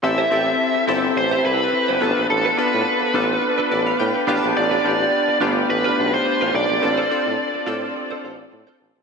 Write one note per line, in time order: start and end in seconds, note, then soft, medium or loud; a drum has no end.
0.03 0.24 A1 loud
0.03 0.23 C4 medium
0.03 0.23 E4 medium
0.03 0.24 G4 medium
0.03 0.24 A4 medium
0.03 0.84 E5 medium
0.03 muted clean electric guitar stroke soft
0.18 0.29 E4 medium
0.18 0.30 G4 medium
0.18 0.31 C5 medium
0.31 0.53 A1 medium
0.31 0.71 C4 medium
0.31 0.44 E4 medium
0.31 0.71 E4 medium
0.31 0.71 G4 medium
0.31 0.45 G4 medium
0.31 0.72 A4 medium
0.31 0.45 C5 medium
0.47 muted clean electric guitar stroke soft
0.75 muted clean electric guitar stroke soft
0.87 1.09 G1 medium
0.87 1.66 C4 medium
0.87 1.67 E4 medium
0.87 1.05 E4 medium
0.87 1.67 G4 medium
0.87 1.03 G4 medium
0.87 1.67 A4 medium
0.87 1.02 C5 medium
1.03 muted clean electric guitar stroke soft
1.16 1.37 A1 medium
1.16 1.45 C5 loud
1.16 muted clean electric guitar stroke soft
1.31 1.43 E4 medium
1.31 1.44 G4 medium
1.31 1.44 C5 medium
1.44 1.66 C2 medium
1.44 1.58 E4 medium
1.44 1.58 G4 medium
1.44 2.26 B4 medium
1.44 1.59 C5 medium
1.60 muted clean electric guitar stroke soft
1.73 muted clean electric guitar stroke soft
1.88 1.98 G1 medium
1.88 2.01 E4 medium
1.88 2.02 G4 medium
1.88 2.02 C5 medium
2.01 2.13 A1 medium
2.01 2.47 B3 medium
2.01 2.08 C#4 medium
2.01 2.48 F4 medium
2.01 2.48 A4 medium
2.01 muted clean electric guitar stroke soft
2.08 2.51 D4 medium
2.17 2.27 A#1 medium
2.17 muted clean electric guitar stroke soft
2.30 2.51 A1 medium
2.30 2.58 A4 medium
2.30 muted clean electric guitar stroke soft
2.45 2.56 D4 medium
2.45 2.57 A4 medium
2.45 2.58 B4 medium
2.57 2.98 B3 medium
2.57 2.98 D4 medium
2.57 2.71 D4 medium
2.57 2.98 F4 medium
2.57 2.98 A4 medium
2.57 2.72 A4 medium
2.57 4.24 B4 medium
2.57 2.72 B4 medium
2.73 2.83 A2 medium
2.73 muted clean electric guitar stroke soft
3.02 muted clean electric guitar stroke soft
3.14 3.36 A1 medium
3.14 3.93 B3 medium
3.14 3.31 D4 medium
3.14 3.93 D4 medium
3.14 3.93 F4 medium
3.14 3.30 A4 medium
3.14 3.94 A4 medium
3.14 3.29 B4 medium
3.30 muted clean electric guitar stroke soft
3.42 muted clean electric guitar stroke soft
3.58 3.69 D4 medium
3.58 3.70 A4 medium
3.58 3.71 B4 medium
3.70 3.92 A1 medium
3.70 3.84 D4 medium
3.70 3.85 A4 medium
3.70 3.85 B4 medium
3.70 3.86 D5 medium
3.86 3.98 F5 medium
3.86 muted clean electric guitar stroke soft
3.99 4.11 A2 loud
3.99 4.34 G5 medium
3.99 muted clean electric guitar stroke soft
4.15 muted clean electric guitar stroke soft
4.27 4.39 A1 medium
4.27 4.74 B3 medium
4.27 4.43 D4 medium
4.27 4.74 D4 medium
4.27 4.42 F4 medium
4.27 4.74 F4 medium
4.27 4.74 G4 loud
4.27 4.41 B4 medium
4.37 4.55 A5 medium
4.42 4.53 A#1 medium
4.42 4.54 D4 medium
4.42 4.54 F4 medium
4.42 4.54 B4 medium
4.55 4.77 A1 loud
4.55 5.37 D5 loud
4.55 muted clean electric guitar stroke soft
4.71 4.82 D4 medium
4.71 4.83 F4 medium
4.71 4.84 B4 medium
4.84 5.06 A1 medium
4.84 5.24 B3 medium
4.84 4.97 D4 medium
4.84 5.24 D4 medium
4.84 4.98 F4 medium
4.84 5.25 F4 medium
4.84 5.25 G4 medium
4.84 4.98 B4 medium
5.00 muted clean electric guitar stroke soft
5.28 muted clean electric guitar stroke soft
5.40 5.62 G1 loud
5.40 5.48 A3 medium
5.40 5.57 D4 medium
5.40 6.20 D4 medium
5.40 6.20 F4 medium
5.40 5.56 F4 medium
5.40 6.20 G4 medium
5.40 5.55 B4 medium
5.47 6.22 B3 medium
5.56 muted clean electric guitar stroke soft
5.69 5.90 A1 medium
5.69 6.14 B4 medium
5.69 muted clean electric guitar stroke soft
5.84 5.96 D4 medium
5.84 5.97 F4 medium
5.84 5.98 B4 medium
5.97 6.19 B1 medium
5.97 6.11 D4 medium
5.97 6.11 F4 medium
5.97 6.12 B4 medium
6.13 6.55 C5 loud
6.13 muted clean electric guitar stroke soft
6.26 muted clean electric guitar stroke soft
6.41 6.51 A1 medium
6.41 6.53 D4 medium
6.41 6.53 F4 medium
6.41 6.54 B4 medium
6.54 6.66 B1 medium
6.54 8.49 D5 medium
6.54 muted clean electric guitar stroke soft
6.69 6.79 A#1 medium
6.69 muted clean electric guitar stroke soft
6.82 7.04 A1 loud
6.82 7.02 C4 medium
6.82 7.03 D4 medium
6.82 7.03 F4 medium
6.82 7.03 A4 medium
6.82 muted clean electric guitar stroke soft
6.98 7.09 F4 medium
6.98 7.10 A4 medium
6.98 7.11 C5 medium
7.10 7.51 C4 medium
7.10 7.51 D4 medium
7.10 7.24 F4 medium
7.10 7.51 F4 medium
7.10 7.24 A4 medium
7.10 7.51 A4 medium
7.10 7.25 C5 medium
7.26 7.36 A2 medium
7.26 muted clean electric guitar stroke soft
7.54 muted clean electric guitar stroke soft
7.66 7.88 A2 medium
7.66 8.46 C4 medium
7.66 8.46 D4 medium
7.66 7.84 F4 medium
7.66 8.46 F4 medium
7.66 7.82 A4 medium
7.66 8.46 A4 medium
7.66 7.81 C5 medium
7.82 muted clean electric guitar stroke soft
7.95 muted clean electric guitar stroke soft
8.11 8.22 F4 medium
8.11 8.23 A4 medium
8.11 8.24 C5 medium
8.23 8.45 A1 medium
8.23 8.37 F4 medium
8.23 8.37 A4 medium
8.23 8.38 C5 medium
8.39 muted clean electric guitar stroke soft
8.52 8.64 A2 medium
8.52 muted clean electric guitar stroke soft
8.67 8.79 F4 medium
8.67 8.79 A4 medium
8.67 8.80 C5 medium
8.80 8.92 A1 medium
8.80 muted clean electric guitar stroke soft
8.96 9.03 A#1 medium
8.96 muted clean electric guitar stroke soft